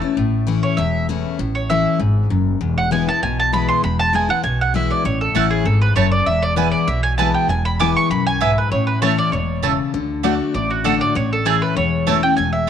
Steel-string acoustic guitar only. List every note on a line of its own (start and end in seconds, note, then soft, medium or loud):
0.00 0.14 E2 loud
0.00 0.17 C#4 soft
0.00 0.16 E4 medium
0.17 0.75 A2 medium
0.47 0.76 E3 medium
0.47 0.76 A3 medium
0.47 0.77 C#4 medium
0.47 0.77 E4 loud
0.78 1.36 E2 loud
1.09 1.38 E3 medium
1.09 1.38 A3 medium
1.09 1.38 C#4 medium
1.09 1.38 E4 medium
1.39 1.97 A2 medium
1.70 1.99 E3 medium
1.70 1.99 A3 medium
1.70 1.99 C#4 medium
1.70 1.99 E4 medium
1.99 2.29 G#2 loud
2.30 2.60 F#2 medium
2.61 3.19 E2 medium
2.91 3.07 E3 medium
2.91 3.07 G#3 medium
2.91 3.07 B3 medium
2.91 3.06 E4 medium
3.08 3.22 B3 soft
3.08 3.22 E4 medium
3.23 3.81 B2 loud
3.52 3.82 E3 medium
3.52 3.82 G#3 medium
3.52 3.82 B3 loud
3.52 3.83 E4 medium
3.84 4.42 E2 medium
4.13 4.29 E3 medium
4.13 4.29 G#3 medium
4.13 4.29 B3 loud
4.13 4.27 E4 medium
4.29 4.44 B3 medium
4.29 4.43 E4 medium
4.43 5.02 B2 loud
4.74 5.03 E3 medium
4.74 5.04 G#3 medium
4.74 5.04 B3 medium
4.74 5.04 E4 medium
5.05 5.63 A2 medium
5.35 5.64 E3 medium
5.35 5.65 A3 medium
5.35 5.65 C#4 medium
5.35 5.65 E4 loud
5.65 5.95 G#2 loud
5.96 6.25 F#2 medium
6.27 6.85 E2 medium
6.56 6.86 E3 medium
6.56 6.86 G#3 medium
6.56 6.87 B3 loud
6.56 6.87 E4 medium
6.88 7.46 B2 loud
7.18 7.48 E3 medium
7.18 7.48 G#3 medium
7.18 7.48 B3 medium
7.18 7.48 E4 medium
7.50 8.08 E2 medium
7.80 8.09 E3 medium
7.80 8.09 G#3 medium
7.80 8.10 B3 medium
7.80 8.10 E4 loud
8.11 8.40 F#2 loud
8.41 8.70 G#2 medium
8.72 9.30 A2 medium
9.02 9.31 E3 medium
9.02 9.31 A3 medium
9.02 9.31 C#4 medium
9.02 9.32 E4 medium
9.33 9.62 B2 medium
9.63 9.92 C#3 medium
9.94 10.23 D3 medium
10.24 10.53 D3 medium
10.24 10.53 A3 medium
10.24 10.54 D4 medium
10.24 10.54 F#4 loud
10.55 11.13 A2 loud
10.84 11.14 D3 medium
10.84 11.14 A3 medium
10.84 11.14 D4 medium
10.84 11.15 F#4 loud
11.15 11.74 A2 medium
11.45 11.75 E3 medium
11.45 11.75 A3 medium
11.45 11.75 C#4 medium
11.45 11.76 E4 medium
11.77 12.35 E2 loud
12.07 12.22 E3 medium
12.07 12.23 A3 medium
12.07 12.23 C#4 loud
12.07 12.22 E4 medium
12.23 12.38 C#4 soft
12.23 12.37 E4 medium
12.38 12.70 E2 medium